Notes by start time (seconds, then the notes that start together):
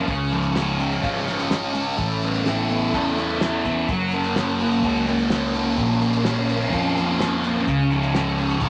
Already playing: F#2 C#3 F#3 C#4
0.07 C#2 C#3 G#4 F5 C#6, kick, closed hi-hat
0.31 F3, closed hi-hat
0.43 closed hi-hat
0.55 C#4, snare, closed hi-hat
0.79 G#3, closed hi-hat
0.92 closed hi-hat
1.03 G#1 F4, kick, closed hi-hat
1.27 G#3, snare, closed hi-hat
1.39 closed hi-hat
1.51 C#4, snare, closed hi-hat
1.74 G#3, closed hi-hat
1.97 A1 A3 C#4 A4 E5 B5, kick, closed hi-hat
2.22 B3, closed hi-hat
2.34 closed hi-hat
2.45 E4, snare, closed hi-hat
2.69 B3, closed hi-hat
2.94 E2 A4, kick, closed hi-hat
3.18 B3, snare, closed hi-hat
3.41 E4, snare, closed hi-hat
3.65 B3, kick, closed hi-hat
3.88 F#1 F#3 C#4 A#4 F#5 A#5, kick, closed hi-hat
4.12 A#3, closed hi-hat
4.24 closed hi-hat
4.36 C#4, snare, closed hi-hat
4.60 A#3, closed hi-hat
4.71 closed hi-hat
4.83 C#2 F#4, kick, closed hi-hat
5.07 A#3, closed hi-hat
5.19 closed hi-hat
5.30 C#4, snare, closed hi-hat
5.54 A#3, closed hi-hat
5.77 A#1 A#2 F5 C6, kick, closed hi-hat
6.01 F3, closed hi-hat
6.13 closed hi-hat
6.25 C#4, snare, closed hi-hat
6.49 A#3, closed hi-hat
6.72 F2 F4, kick, closed hi-hat
6.96 A#3, snare, closed hi-hat
7.19 C#4, snare, closed hi-hat
7.43 A#3, closed hi-hat
7.67 C#2 C#3 G#4 C#6, kick, closed hi-hat
7.91 F3, closed hi-hat
8.03 closed hi-hat
8.14 C#4, snare, closed hi-hat
8.38 G#3, closed hi-hat
8.50 closed hi-hat
8.61 G#1 F4, kick, closed hi-hat